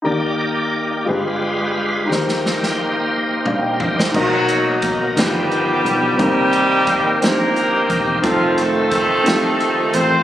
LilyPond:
<<
  \new Staff \with { instrumentName = "Upright piano" } { \time 6/8 \key c \minor \tempo 4. = 59 << { r2. | r2 <d'' f''>16 <ees'' g''>8 <c'' ees''>16~ | <c'' ees''>16 r2 r8. | r2. |
r2. | } \\ { <ees' g' bes' d''>4. <f' g' aes' b'>4. | <ees' g' bes' c''>2. | <dis' fis' ais' dis''>4. <ees f' g' b'>4. | <c' ees' g' bes'>4. <c' d' ees' g' c''>4. |
<c' ees' f' a'>4. <c' ees' f' g' a'>4. | } >> }
  \new Staff \with { instrumentName = "Upright piano" } { \clef bass \time 6/8 \key c \minor ees4. g,4. | ees4. r4. | b,4. g,4. | c4. r4. |
r2. | }
  \new Staff \with { instrumentName = "Horn section" } { \time 6/8 \key c \minor << { r2. | r2. | <fis fis'>4 r8 <g g'>4. | <g g'>4. <bes bes'>4 r8 |
<f f'>8 <a a'>8 <a a'>4. <c' c''>8 | } \\ { r2. | r2. | <ais dis'>4. <b d'>4. | <bes ees'>4. <ees' g'>4. |
<a c'>4 <c' ees'>4. r8 | } >> }
  \new Staff \with { instrumentName = "Tonewheel organ" } { \time 6/8 \key c \minor <bes ees' g' d''>4. <g aes f' b'>4. | <bes ees' g' c''>2. | <b, fis dis' ais'>4. <ees f aes b g'>4. | <ees bes c' g'>2. |
<ees a c' f'>2. | }
  \new Staff \with { instrumentName = "Fingered electric bass" } { \clef bass \time 6/8 \key c \minor ees,4. g,,4. | ees,2. | b,,4. g,,4 b,,8 | c,2~ c,8 fes,,8 |
f,,2~ f,,8 a,,8 | }
  \new DrumStaff \with { instrumentName = "Drums" } \drummode { \time 6/8 r4. r4. | sn16 sn16 sn16 sn8. r8 toml8 tomfh16 sn16 | <cymc bd>8 hh8 <hh bd>8 <hh sn>8 hh8 hh8 | <hh bd>8 hh8 <hh bd>8 <hh sn>8 hh8 <hh bd>8 |
<hh bd>8 hh8 <hh bd>8 <hh sn>8 hh8 hh8 | }
>>